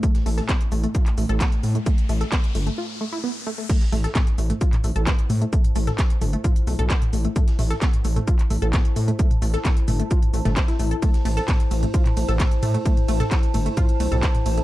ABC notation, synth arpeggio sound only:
X:1
M:4/4
L:1/16
Q:1/4=131
K:Am
V:1 name="Synth arpeggio sound"
A, z A, A B, z A, A, F z A, A B, z A, A, | A, z A, A B, z A, A, F z A, E B, z A, A, | A, z A, A B, z A, A, F z A, A B, z A, A, | A, z A, A B, z A, A, F z A, A B, z A, A, |
A, z A, A B, z A, A, F z A, A B, z A, A, | A, z A, A B, z A, A, F z A, A, C E A, A | A, z A, A B, z A, A, F z A, A B, z A, A, | A, z A, A B, z A, A, F z A, A B, z A, A, |]